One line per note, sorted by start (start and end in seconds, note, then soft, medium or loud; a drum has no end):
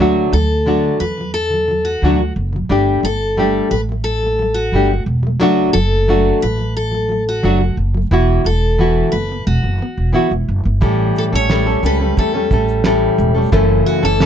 0.00 0.26 D2 medium
0.00 0.31 D3 medium
0.00 0.33 F#3 medium
0.00 0.34 A3 medium
0.00 0.34 D4 medium
0.00 0.34 F#4 medium
0.33 0.88 D2 medium
0.33 0.60 D3 medium
0.33 0.62 F#3 medium
0.33 1.00 A4 medium
0.66 0.98 D3 medium
0.66 1.01 F#3 medium
0.66 1.01 A3 medium
0.66 1.01 D4 medium
0.66 1.01 F#4 medium
1.00 1.98 E2 medium
1.00 1.16 D3 soft
1.00 1.19 F#3 medium
1.00 1.32 B4 medium
1.18 1.45 D3 soft
1.18 1.46 F#3 soft
1.34 1.87 A4 medium
1.50 1.67 D3 soft
1.50 1.70 F#3 soft
1.68 1.95 D3 medium
1.68 1.97 F#3 medium
1.85 2.32 F#4 medium
2.02 2.30 D2 medium
2.02 2.17 D3 medium
2.02 2.20 F#3 medium
2.02 2.20 A3 medium
2.02 2.20 D4 medium
2.02 2.21 F#4 medium
2.19 2.46 D3 soft
2.19 2.48 F#3 soft
2.36 2.64 F#1 medium
2.53 2.70 D3 soft
2.53 2.69 F#3 medium
2.69 2.98 G1 medium
2.69 3.02 G3 medium
2.69 3.04 A3 medium
2.69 3.04 D4 medium
2.69 3.05 G4 medium
3.03 3.59 G1 medium
3.03 3.31 G3 medium
3.03 3.32 A3 medium
3.03 3.68 A4 medium
3.37 3.70 G3 medium
3.37 3.72 A3 medium
3.37 3.72 D4 medium
3.37 3.72 G4 medium
3.71 4.69 A1 medium
3.71 3.88 G3 medium
3.71 3.90 A3 medium
3.71 3.80 B4 medium
3.89 4.16 G3 soft
3.89 4.17 A3 soft
4.04 4.57 A4 medium
4.23 4.38 G3 soft
4.23 4.41 A3 medium
4.39 4.66 G3 medium
4.39 4.68 A3 medium
4.54 5.02 F#4 medium
4.72 5.00 G1 medium
4.72 4.89 G3 medium
4.72 4.91 A3 medium
4.72 4.91 D4 medium
4.72 4.91 G4 medium
4.90 5.17 G3 soft
4.90 5.19 A3 soft
5.06 5.40 E1 medium
5.23 5.39 G3 soft
5.23 5.40 A3 soft
5.40 5.68 F#1 medium
5.40 5.72 F#3 medium
5.40 5.75 A3 medium
5.40 5.75 D4 medium
5.40 5.75 F#4 medium
5.73 6.30 F#1 medium
5.73 6.01 F#3 medium
5.73 6.38 A4 medium
6.08 6.40 F#3 medium
6.08 6.43 A3 medium
6.08 6.43 D4 medium
6.08 6.43 F#4 medium
6.41 7.40 A1 medium
6.41 6.57 F#3 medium
6.41 6.60 A3 medium
6.41 6.76 B4 medium
6.58 6.86 F#3 soft
6.58 6.87 A3 soft
6.77 7.24 A4 medium
6.92 7.08 F#3 soft
6.92 7.11 A3 soft
7.09 7.37 F#3 soft
7.09 7.38 A3 medium
7.29 7.75 F#4 medium
7.43 7.71 F#1 medium
7.43 7.60 F#3 medium
7.43 7.61 A3 medium
7.43 7.61 D4 medium
7.43 7.61 F#4 medium
7.61 7.88 F#3 soft
7.61 7.90 A3 soft
7.77 8.05 F#1 medium
7.94 8.11 F#3 soft
7.94 8.12 A3 soft
8.11 8.39 E1 medium
8.11 8.43 E3 medium
8.11 8.46 B3 medium
8.11 8.46 E4 medium
8.11 8.46 F#4 medium
8.44 9.01 E1 medium
8.44 8.72 E3 medium
8.44 9.09 A4 medium
8.79 9.11 E3 medium
8.79 9.13 B3 medium
8.79 9.14 E4 medium
8.79 9.14 F#4 medium
9.12 9.41 F#1 medium
9.12 9.28 E3 medium
9.12 9.44 B4 medium
9.16 9.31 B3 medium
9.29 9.57 E3 soft
9.29 9.58 B3 soft
9.47 9.61 E1 medium
9.47 10.10 F#4 medium
9.63 9.78 F#1 medium
9.63 9.77 E3 soft
9.63 9.81 B3 soft
9.79 10.07 E3 medium
9.79 10.09 B3 medium
9.97 10.11 E1 medium
10.13 10.29 E3 medium
10.13 10.31 B3 medium
10.13 10.31 E4 medium
10.13 10.32 F#4 medium
10.31 10.45 E1 medium
10.31 10.59 B3 medium
10.48 10.62 F#1 medium
10.64 10.79 G1 medium
10.64 10.80 E3 soft
10.64 10.82 B3 soft
10.81 11.10 A1 medium
10.81 11.32 A2 medium
10.81 11.32 E3 medium
10.81 11.33 G3 medium
10.81 11.33 A3 medium
10.81 11.33 C#4 medium
10.81 11.31 A4 medium
10.81 kick loud
10.81 shaker medium
11.16 11.23 A4 medium
11.16 shaker soft
11.33 11.74 A1 medium
11.33 11.49 G3 soft
11.33 11.50 A3 soft
11.33 11.50 C#4 soft
11.33 11.50 A4 soft
11.33 11.85 C#5 medium
11.49 11.66 A2 medium
11.49 11.67 E3 medium
11.49 11.67 G3 medium
11.49 11.67 A3 medium
11.49 11.66 C#4 medium
11.49 11.65 A4 medium
11.49 snare loud
11.49 shaker medium
11.67 11.82 G3 soft
11.67 11.83 A3 soft
11.67 11.84 C#4 soft
11.67 11.84 A4 soft
11.83 12.11 C#2 medium
11.83 12.00 G3 medium
11.83 12.01 A3 medium
11.83 12.00 C#4 medium
11.83 11.99 A4 medium
11.83 12.16 B4 medium
11.83 shaker medium
12.00 12.16 G3 soft
12.00 12.18 A3 soft
12.00 12.18 C#4 soft
12.00 12.17 A4 soft
12.17 12.45 E2 medium
12.17 12.34 G3 medium
12.17 12.35 A3 medium
12.17 12.34 C#4 medium
12.17 13.15 A4 medium
12.17 12.33 A4 medium
12.17 kick medium
12.17 shaker medium
12.34 12.50 G3 soft
12.34 12.51 A3 soft
12.34 12.52 C#4 soft
12.34 12.51 A4 soft
12.51 13.07 A1 medium
12.51 12.84 G3 soft
12.51 12.85 A3 soft
12.51 12.86 C#4 medium
12.51 12.85 A4 medium
12.51 kick medium
12.51 shaker medium
12.68 shaker soft
12.84 13.36 A2 medium
12.84 13.36 E3 medium
12.84 13.36 G3 medium
12.84 13.36 A3 medium
12.84 13.35 C#4 medium
12.84 13.33 A4 medium
12.84 snare loud
12.84 shaker medium
13.18 13.46 E1 medium
13.18 shaker medium
13.35 13.52 G3 soft
13.35 13.52 A3 soft
13.35 13.52 C#4 soft
13.35 13.52 A4 soft
13.52 13.80 F#1 medium
13.52 14.03 F#2 medium
13.52 14.03 C#3 medium
13.52 14.03 E3 medium
13.52 14.03 A3 medium
13.52 14.03 C#4 medium
13.52 14.02 A4 medium
13.52 kick loud
13.52 shaker medium
13.86 14.04 F#4 medium
13.86 shaker soft
14.03 14.26 F#1 medium
14.03 14.20 E3 soft
14.03 14.21 A3 soft
14.03 14.21 C#4 soft
14.03 14.20 A4 soft
14.03 14.26 A4 medium
14.20 14.26 F#2 medium
14.20 14.26 C#3 medium
14.20 14.26 E3 medium
14.20 14.26 A3 medium
14.20 14.26 C#4 medium
14.20 14.26 A4 medium
14.20 snare loud
14.20 shaker medium